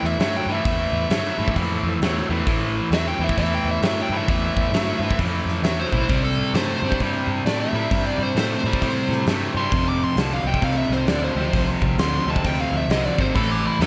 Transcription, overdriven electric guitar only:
0.00 0.16 A2 medium
0.00 0.16 E3 medium
0.20 0.45 A2 medium
0.20 0.45 F#3 medium
0.48 0.63 A2 medium
0.48 0.64 E3 medium
0.65 1.07 A2 medium
0.65 1.07 E3 medium
1.10 1.36 A2 medium
1.10 1.36 F#3 medium
1.38 1.54 A2 medium
1.38 1.54 E3 medium
1.55 1.97 A2 medium
1.55 1.98 E3 medium
2.02 2.27 A2 medium
2.02 2.28 F#3 medium
2.30 2.45 A2 medium
2.30 2.45 E3 medium
2.47 2.89 A2 medium
2.47 2.89 E3 medium
2.91 3.17 A2 medium
2.91 3.18 F#3 loud
3.20 3.36 A2 medium
3.20 3.36 E3 medium
3.38 3.80 A2 medium
3.38 3.80 E3 medium
3.82 4.08 A2 medium
3.82 4.08 F#3 medium
4.11 4.26 A2 medium
4.11 4.27 E3 medium
4.28 4.70 A2 medium
4.28 4.70 E3 medium
4.73 4.99 A2 medium
4.73 4.99 F#3 medium
5.02 5.17 A2 medium
5.02 5.17 E3 medium
5.18 5.60 A2 medium
5.18 5.61 E3 medium
5.63 5.89 A2 medium
5.63 5.90 F#3 medium
5.92 6.08 A2 medium
5.92 6.08 E3 medium
6.09 6.51 C3 medium
6.09 6.51 G3 medium
6.55 6.80 C3 medium
6.55 6.81 A3 medium
6.84 6.99 C3 medium
6.84 6.99 G3 medium
7.01 7.43 C3 medium
7.01 7.43 G3 medium
7.46 7.71 C3 medium
7.46 7.72 A3 medium
7.74 7.89 C3 medium
7.74 7.89 G3 medium
7.91 8.33 C3 medium
7.91 8.33 G3 medium
8.36 8.62 C3 medium
8.36 8.62 A3 loud
8.65 8.80 C3 medium
8.65 8.80 G3 medium
8.82 9.24 C3 medium
8.82 9.24 G3 medium
9.28 9.53 C3 medium
9.28 9.53 A3 medium
9.56 9.71 C3 medium
9.56 9.71 G3 medium
9.73 10.14 F2 medium
9.73 10.15 C3 medium
10.17 10.43 F2 medium
10.17 10.43 D3 loud
10.46 10.61 F2 medium
10.46 10.62 C3 medium
10.62 11.05 F2 medium
10.62 11.05 C3 medium
11.08 11.33 F2 medium
11.08 11.34 D3 medium
11.36 11.52 F2 medium
11.36 11.52 C3 medium
11.54 11.96 F2 medium
11.54 11.96 C3 medium
11.99 12.24 F2 medium
11.99 12.25 D3 medium
12.28 12.43 F2 medium
12.28 12.43 C3 medium
12.44 12.86 F2 medium
12.44 12.86 C3 medium
12.90 13.15 F2 medium
12.90 13.15 D3 medium
13.18 13.33 F2 medium
13.18 13.34 C3 medium
13.34 13.76 A2 medium
13.34 13.76 E3 medium
13.80 13.87 A2 medium
13.80 13.87 F#3 medium

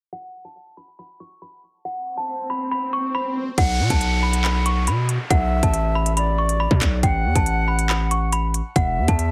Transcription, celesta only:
0.13 0.43 F#5 loud
0.45 0.75 A5 medium
0.77 0.97 B5 medium
0.99 1.18 B5 medium
1.20 1.40 C#6 medium
1.42 1.61 B5 medium
1.85 2.16 F#5 medium
2.17 2.48 A5 medium
2.50 2.69 B5 medium
2.71 2.91 B5 medium
2.93 3.12 C#6 medium
3.15 3.34 B5 medium
3.58 3.88 F#5 loud
3.90 4.21 A5 medium
4.23 4.42 B5 medium
4.44 4.64 B5 medium
4.66 4.85 C#6 medium
4.88 5.07 B5 medium
5.30 5.61 F#5 loud
5.63 5.93 A5 medium
5.95 6.15 B5 medium
6.17 6.36 B5 medium
6.38 6.58 C#6 medium
6.60 6.79 B5 medium
7.03 7.34 G5 loud
7.36 7.66 A5 medium
7.68 7.87 B5 medium
7.90 8.09 B5 medium
8.11 8.30 C#6 medium
8.33 8.52 B5 medium
8.76 9.06 F#5 loud
9.08 9.31 A5 medium

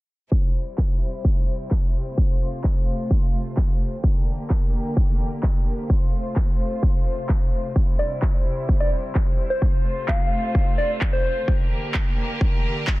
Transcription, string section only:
0.32 4.00 C3 medium
0.32 2.16 G3 medium
0.32 2.16 E4 medium
0.32 4.00 C5 medium
2.18 4.02 A3 medium
2.18 4.02 F4 medium
4.04 5.88 D3 medium
4.04 5.88 A#3 medium
4.04 5.88 G4 medium
4.04 5.88 A#4 medium
5.90 11.44 C3 medium
5.90 7.74 A3 medium
5.90 7.74 F4 medium
5.90 7.74 C5 medium
7.76 9.60 G3 medium
7.76 9.60 E4 medium
7.76 11.44 C5 medium
9.62 11.46 A3 medium
9.62 11.46 F4 medium
11.48 13.00 D3 medium
11.48 13.00 A#3 medium
11.48 13.00 G4 medium
11.48 13.00 A#4 medium

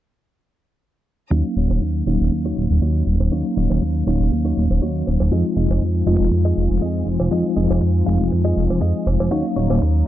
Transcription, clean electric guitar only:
1.31 1.45 D#4 loud
1.31 1.45 F#4 medium
1.31 1.45 C#5 medium
1.57 1.82 D#4 medium
1.57 1.82 F#4 medium
1.57 1.82 C#5 medium
2.07 2.26 D#4 medium
2.07 2.26 F#4 medium
2.07 2.26 C#5 medium
2.45 2.64 D#4 medium
2.45 2.64 F#4 medium
2.45 2.64 C#5 loud
2.82 3.07 D#4 medium
2.82 3.07 F#4 medium
2.82 3.07 C#5 medium
3.32 3.45 D#4 loud
3.32 3.45 F#4 medium
3.32 3.45 C#5 loud
3.57 3.82 D#4 medium
3.57 3.82 F#4 medium
3.57 3.82 C#5 medium
4.07 4.26 D#4 medium
4.07 4.26 F#4 medium
4.07 4.26 C#5 medium
4.45 4.63 D#4 loud
4.45 4.63 F#4 medium
4.45 4.64 C#5 loud
4.82 5.07 D#4 medium
4.82 5.07 F#4 medium
4.82 5.07 C#5 medium
5.32 5.45 F4 loud
5.32 5.45 G#4 medium
5.32 5.45 D#5 loud
5.57 5.82 F4 medium
5.57 5.82 G#4 medium
5.57 5.82 D#5 medium
6.07 6.26 F4 medium
6.07 6.26 G#4 medium
6.07 6.26 D#5 medium
6.45 6.63 F4 medium
6.45 6.64 G#4 medium
6.45 6.64 D#5 loud
6.81 7.07 F4 medium
6.81 7.07 G#4 medium
6.81 7.07 D#5 medium
7.31 7.45 F4 medium
7.31 7.45 G#4 medium
7.31 7.45 D#5 loud
7.56 7.82 F4 medium
7.56 7.82 G#4 medium
7.56 7.82 D#5 medium
8.06 8.26 F4 medium
8.06 8.26 G#4 medium
8.06 8.26 F5 medium
8.45 8.63 F4 medium
8.45 8.63 G#4 medium
8.45 8.63 D#5 loud
8.81 9.06 F4 medium
8.81 9.07 G#4 medium
8.81 9.07 D#5 medium
9.31 9.45 D#4 loud
9.31 9.45 F#4 medium
9.31 9.45 C#5 medium
9.56 9.82 D#4 medium
9.56 9.82 F#4 medium
9.56 9.82 C#5 medium

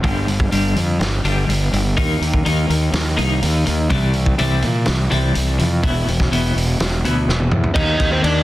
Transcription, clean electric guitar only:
0.03 0.25 G2 medium
0.03 0.26 D3 medium
0.03 0.27 G3 medium
0.27 0.49 G2 medium
0.27 0.49 D3 medium
0.51 0.75 G2 medium
0.51 0.75 D3 medium
0.51 0.75 G3 medium
0.76 0.98 G2 medium
0.76 0.98 D3 medium
0.99 1.22 G2 medium
0.99 1.22 D3 medium
1.24 1.47 G2 medium
1.24 1.48 D3 medium
1.24 1.48 G3 medium
1.49 1.71 G2 medium
1.49 1.71 D3 medium
1.73 1.95 G2 medium
1.73 1.95 D3 medium
1.97 2.20 D#3 medium
1.97 2.20 A#3 medium
1.97 2.20 D#4 medium
2.21 2.43 D#3 medium
2.21 2.43 A#3 medium
2.45 2.68 D#3 medium
2.45 2.68 A#3 medium
2.45 2.69 D#4 medium
2.69 2.91 D#3 medium
2.69 2.91 A#3 medium
2.93 3.15 D#3 medium
2.93 3.15 A#3 medium
3.17 3.40 D#3 medium
3.17 3.40 A#3 medium
3.17 3.41 D#4 medium
3.41 3.63 D#3 medium
3.41 3.64 A#3 medium
3.66 3.88 D#3 medium
3.66 3.88 A#3 medium
3.90 4.13 C3 medium
3.90 4.13 E3 medium
3.90 4.13 G3 medium
4.15 4.36 C3 medium
4.15 4.36 E3 medium
4.39 4.61 C3 medium
4.39 4.61 E3 medium
4.39 4.62 G3 medium
4.63 4.84 C3 medium
4.63 4.84 E3 medium
4.86 5.08 C3 medium
4.86 5.08 E3 medium
5.10 5.33 C3 medium
5.10 5.33 E3 medium
5.10 5.34 G3 loud
5.35 5.56 C3 medium
5.35 5.57 E3 medium
5.58 5.80 C3 medium
5.58 5.81 E3 medium
5.83 6.06 E2 medium
5.83 6.06 B2 medium
5.83 6.06 E3 medium
6.08 6.29 E2 medium
6.08 6.29 B2 medium
6.31 6.54 E2 medium
6.31 6.54 B2 medium
6.31 6.55 E3 medium
6.55 6.77 E2 medium
6.55 6.77 B2 medium
6.80 7.01 E2 medium
6.80 7.02 B2 medium
7.05 7.27 E2 medium
7.05 7.27 B2 medium
7.05 7.27 E3 medium
7.29 7.50 E2 medium
7.29 7.50 B2 medium
7.53 7.74 E2 medium
7.53 7.74 B2 medium
7.76 8.43 D#3 medium
8.25 8.43 A#3 medium

